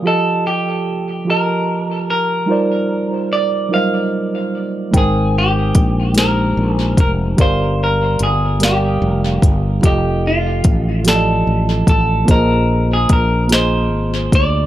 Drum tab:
HH |------|------|x-xx-x|x-xx-x|
SD |------|------|---o--|---o--|
BD |------|------|o-o--o|o----o|

HH |x-xx-x|x-xx-x|
SD |---o--|---o--|
BD |o-o--o|o-o--o|